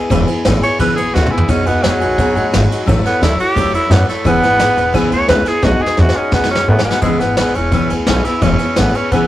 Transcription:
Already playing: B4
0.10 E1 C#3 E3 B3 E4 G#4 B4, kick, ride
0.26 B3 E4 G#4 B4, muted upright bass stroke, ride
0.44 A1 B3 E4 G#4 B4, snare, ride
0.62 B3 E4 G#4 B4 C#5, muted upright bass stroke, ride
0.79 B1 C#3 E3 B3 E4 G#4 B4, kick, snare, ride
0.96 B1 B3 E4 G#4 B4, ride
1.13 D2 B3 E4 F#4 G#4 B4, snare
1.26 mid tom
1.30 B3 E4 G#4 B4, muted upright bass stroke
1.37 floor tom
1.48 B1 B3 C#4 D#4 F#4 G#4, kick, ride
1.66 D#2 B3 D#4 F#4 G#4, ride
1.83 E2 F#3 B3 D#4 F#4 G#4, snare, ride
2.00 B1 D#4 F#4 G#4, ride
2.18 F#2 B3 D#4 F#4 G#4, kick, ride
2.35 A2 D#4 F#4 G#4, ride
2.51 G#1 B3 D#4 F#4 G#4, snare, ride
2.69 D#4 F#4 G#4, snare, ride
2.86 A1 F#3 A3 E4 A4 C#5, kick, ride
3.03 B3 E4 A4 C#5, muted upright bass stroke, snare, ride
3.21 D2 F#3 E4 A4 C#5, snare, ride
3.38 E4 G4 A4 C#5, muted upright bass stroke, ride
3.55 E2 F#3 A3 E4 A4 C#5, kick, ride
3.72 E2 E4 A4 C#5, ride
3.89 F#2 F#3 B3 E4 A4 C#5, snare, ride
4.07 A3 E4 A4 C#5, snare, ride
4.24 E1 C#3 E3 B3 E4 G#4 B4, kick, ride
4.41 G#1 B3 E4 G#4 B4, snare, ride
4.59 A1 B3 E4 G#4 B4, snare, ride
4.76 E1 B3 E4 G#4 B4, ride
4.93 B1 C#3 E3 B3 E4 G#4 B4, kick, snare, ride
5.10 D2 B3 E4 G#4 B4 C#5, ride
5.27 C#2 B3 E4 G#4 B4, snare, ride
5.45 B3 E4 G#4 B4, muted upright bass stroke, snare, ride
5.62 B1 B3 D#4 F#4 G#4, kick, snare
5.80 D#4 F#4 G#4, muted upright bass stroke
5.86 snare
5.97 E2 B3 D#4 F#4 G#4, snare
6.09 snare
6.15 C#4 D#4 F#4 G#4, muted upright bass stroke
6.32 F#2 B3 D#4 F#4 G#4, kick, snare
6.43 snare
6.49 F#2 C#4 D#4 F#4 G#4
6.55 snare
6.67 A2 B3 D#4 F#4 G#4
6.79 snare
6.84 B3 D#4 F#4 G#4, muted upright bass stroke
6.91 snare
7.01 E1 C#3 E3 G#3 B3 E4 G#4 B4, kick, ride
7.20 G#1 B3 E4 G#4 B4, snare, ride
7.37 A1 B3 E4 B4, snare, ride
7.41 G#4
7.54 E1 B3 C#4 E4 G#4 B4, ride
7.72 B1 C#3 E3 B3 E4 G#4 B4, kick, snare, ride
7.90 D2 B3 E4 G#4 B4, ride
8.06 B1 B3 C#4 E4 G#4 B4, snare, ride
8.24 B3 E4 G#4 B4, muted upright bass stroke, snare, ride
8.41 E1 C#3 E3 B3 C#4 E4 G#4 B4, kick, ride
8.59 B3 E4 G#4 B4, snare, ride
8.76 A1 B3 E4 G#4 B4, snare, ride
8.94 B3 C#4 E4 G#4 B4, muted upright bass stroke, ride
9.11 B1 C#3 E3 B3 E4 G#4 B4, kick, ride

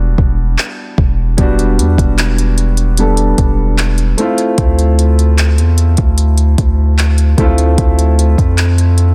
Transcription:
Already playing: E1 G3 B3 D4 F#4
0.18 E1, kick
0.58 clap
0.98 E1, kick
1.37 E1 G3 B3 D4 F#4, kick, closed hi-hat
1.59 closed hi-hat
1.78 E2, closed hi-hat
1.98 E1, kick, closed hi-hat
2.18 clap, closed hi-hat
2.38 closed hi-hat
2.58 closed hi-hat
2.77 closed hi-hat
2.97 G3 B3 D4 A4, closed hi-hat
3.17 closed hi-hat
3.38 E1, kick, closed hi-hat
3.78 clap, closed hi-hat
3.98 closed hi-hat
4.17 A3 C4 E4 F4, closed hi-hat
4.38 closed hi-hat
4.58 D2, kick, closed hi-hat
4.79 closed hi-hat
4.99 closed hi-hat
5.19 closed hi-hat
5.38 clap, closed hi-hat
5.58 E2, closed hi-hat
5.78 closed hi-hat
5.97 D2, kick, closed hi-hat
6.18 closed hi-hat
6.38 closed hi-hat
6.58 D2, kick, closed hi-hat
6.99 clap, closed hi-hat
7.18 closed hi-hat
7.38 D2 A3 C4 E4 F4, kick, closed hi-hat
7.58 closed hi-hat
7.78 D2, kick, closed hi-hat
7.99 closed hi-hat
8.19 closed hi-hat
8.38 F2, kick, closed hi-hat
8.58 clap, closed hi-hat
8.78 closed hi-hat
8.98 closed hi-hat

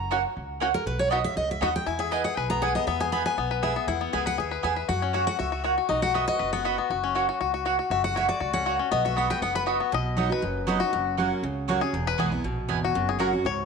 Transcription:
Already playing: F#1 A#5
0.11 A#3 C#4 F#4 C#5 F#5
0.37 C#2
0.60 A#3 C#4 F#4 C#5 F#5
0.74 A#4
0.86 B1 B4
0.99 C#5
1.11 B3 D#4 F#4 D#5 B5
1.24 E5
1.36 C#2 D#5
1.51 E5
1.61 D#2 B3 D#4 F#4 D#5 F#5 B5
1.76 G5
1.86 E2 E4 G#5
1.99 G#4 E5
2.11 B3 E4 B4 D#5 G#5
2.24 G#4 F#5
2.37 B1 B4 G#5
2.50 B3 A#5
2.62 B3 E4 G#4 B4 F#5 G#5
2.75 B3 D#5
2.87 E2 B3 E5
3.00 G#4 G#5
3.12 B3 E4 B4 G#5 B5
3.26 B4 G#5
3.38 B1 B3
3.51 B4
3.63 B3 E4 G#4 B4 E5 G#5
3.76 B3
3.88 E2 E4 F#5
4.01 B3
4.13 C#2 B3 E4 G#4 B4 E5 G#5
4.26 B4 F#5
4.38 D#2 G#4 E5
4.51 B4
4.63 E2 B3 E4 G#4 B4 E5 G#5
4.76 B4
4.89 F#2 F#4 F#5
5.02 C#4
5.13 A#3 F#4 C#5 E5 F#5
5.27 F#4 F#5
5.39 C#2 F#4 E5
5.52 F#4
5.64 A#3 F#4 C#5 F#5
5.78 F#4
5.89 B1 D#4 D#5
6.02 F#4 F#5
6.14 B3 F#4 B4 D#5 E5 B5
6.28 F#4 D#5
6.39 F#1 B4
6.53 B3 F#5
6.65 B3 F#4 D#5 B5
6.78 B3
6.90 F#1 F#4
7.04 C#4
7.15 A#3 F#4 C#5 F#5
7.29 F#4
7.41 C#2 F#4
7.54 F#4
7.65 A#3 F#4 C#5 F#5
7.79 F#4
7.90 F#1 F#4 E5
8.04 F#4 F#5
8.15 A#3 F#4 C#5 E5 F#5
8.28 F#4 D5
8.40 C#2 F#4
8.53 C#4 F#5
8.66 A#3 F#4 C#5 F#5
8.79 C#4
8.91 B1 B3 D#5
9.05 F#4 E5
9.16 B3 F#4 D#5 F#5 B5
9.30 B4 G5
9.42 F#1 B3 F#5
9.55 B4 B5
9.66 B3 F#4 D#5 B5
9.80 B3
9.92 B1 B2 D#5
10.17 F#3 B3 D#4 F#4 D#5 B5
10.30 D#4 F#4 B4
10.42 F#1 F#2
10.67 F#3 B3 D#4 F#4 D#5 B5
10.80 D#4 F#4
10.93 F#1 F#2
11.17 F#3 A#3 C#4 F#4 C#5 F#5
11.43 C#2 C#3
11.68 F#3 A#3 C#4 F#4 C#5 F#5
11.81 C#4 F#4 G#4
11.93 E1 E2
12.07 B4
12.18 B1 E3 G#3 B3 E4 G#4 B4 G#5
12.32 B3 E4
12.44 A#1 B2
12.68 G#1 E2 B3 E4 B4 G#5
12.85 F#4
12.95 F#1 F#2
13.09 G#4
13.19 F#3 A#3 C#4 F#4 A#4 C#5 F#5
13.33 C#4 F#4
13.45 C#2 G#2 C#5

